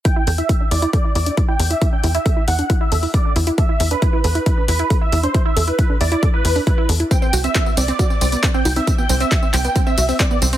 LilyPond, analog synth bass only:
\new Staff \with { instrumentName = "Analog synth bass" } { \clef bass \time 4/4 \key e \minor \tempo 4 = 136 r8 e,8 r8 e,8 r8 e,8 r8 e,8 | r8 e,8 r8 e,8 r8 e,8 r8 e,8 | r8 e,8 r8 e,8 r8 e,8 r8 e,8 | r8 e,8 r8 e,8 r8 e,8 r8 e,8 |
r8 c,8 r8 c,8 r8 c,8 r8 c,8 | r8 c,8 r8 c,8 r8 c,8 r8 c,8 | }